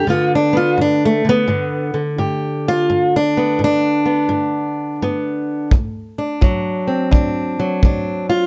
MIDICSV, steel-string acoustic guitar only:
0, 0, Header, 1, 2, 480
1, 0, Start_track
1, 0, Tempo, 705882
1, 38, Time_signature, 4, 2, 24, 8
1, 5758, End_track
2, 0, Start_track
2, 0, Title_t, "Steel-string acoustic guitar"
2, 0, Program_c, 0, 25
2, 47, Note_on_c, 0, 43, 65
2, 48, Note_on_c, 0, 50, 48
2, 58, Note_on_c, 0, 59, 50
2, 67, Note_on_c, 0, 65, 81
2, 213, Note_off_c, 0, 65, 0
2, 239, Note_on_c, 0, 62, 80
2, 357, Note_off_c, 0, 59, 0
2, 360, Note_on_c, 0, 59, 47
2, 380, Note_off_c, 0, 62, 0
2, 386, Note_on_c, 0, 65, 85
2, 491, Note_off_c, 0, 43, 0
2, 528, Note_on_c, 0, 43, 67
2, 533, Note_off_c, 0, 65, 0
2, 553, Note_on_c, 0, 62, 85
2, 697, Note_off_c, 0, 62, 0
2, 716, Note_on_c, 0, 57, 90
2, 838, Note_off_c, 0, 50, 0
2, 848, Note_on_c, 0, 50, 45
2, 859, Note_off_c, 0, 57, 0
2, 874, Note_off_c, 0, 59, 0
2, 877, Note_on_c, 0, 59, 94
2, 972, Note_off_c, 0, 43, 0
2, 999, Note_off_c, 0, 50, 0
2, 1003, Note_on_c, 0, 43, 77
2, 1007, Note_on_c, 0, 50, 45
2, 1310, Note_off_c, 0, 50, 0
2, 1318, Note_on_c, 0, 50, 45
2, 1340, Note_off_c, 0, 59, 0
2, 1450, Note_off_c, 0, 43, 0
2, 1485, Note_on_c, 0, 43, 69
2, 1489, Note_on_c, 0, 67, 44
2, 1824, Note_on_c, 0, 65, 97
2, 1931, Note_off_c, 0, 43, 0
2, 1947, Note_off_c, 0, 67, 0
2, 1969, Note_on_c, 0, 43, 69
2, 2134, Note_off_c, 0, 65, 0
2, 2150, Note_on_c, 0, 62, 83
2, 2293, Note_on_c, 0, 59, 44
2, 2414, Note_off_c, 0, 43, 0
2, 2441, Note_on_c, 0, 43, 73
2, 2457, Note_off_c, 0, 62, 0
2, 2476, Note_on_c, 0, 62, 97
2, 2749, Note_off_c, 0, 59, 0
2, 2757, Note_on_c, 0, 59, 41
2, 2889, Note_off_c, 0, 43, 0
2, 2916, Note_on_c, 0, 43, 73
2, 3366, Note_off_c, 0, 43, 0
2, 3404, Note_off_c, 0, 59, 0
2, 3416, Note_on_c, 0, 43, 70
2, 3416, Note_on_c, 0, 59, 44
2, 3856, Note_off_c, 0, 43, 0
2, 3868, Note_off_c, 0, 59, 0
2, 3885, Note_off_c, 0, 50, 0
2, 3889, Note_on_c, 0, 38, 73
2, 3899, Note_off_c, 0, 62, 0
2, 4205, Note_on_c, 0, 62, 46
2, 4332, Note_off_c, 0, 38, 0
2, 4361, Note_on_c, 0, 38, 74
2, 4364, Note_on_c, 0, 54, 50
2, 4674, Note_on_c, 0, 60, 44
2, 4807, Note_off_c, 0, 38, 0
2, 4835, Note_off_c, 0, 62, 0
2, 4837, Note_on_c, 0, 38, 78
2, 4838, Note_on_c, 0, 62, 47
2, 5153, Note_off_c, 0, 54, 0
2, 5164, Note_on_c, 0, 54, 50
2, 5284, Note_off_c, 0, 38, 0
2, 5317, Note_off_c, 0, 62, 0
2, 5324, Note_on_c, 0, 38, 67
2, 5334, Note_on_c, 0, 62, 49
2, 5638, Note_off_c, 0, 62, 0
2, 5640, Note_on_c, 0, 65, 93
2, 5758, Note_off_c, 0, 38, 0
2, 5758, Note_off_c, 0, 54, 0
2, 5758, Note_off_c, 0, 60, 0
2, 5758, Note_off_c, 0, 65, 0
2, 5758, End_track
0, 0, End_of_file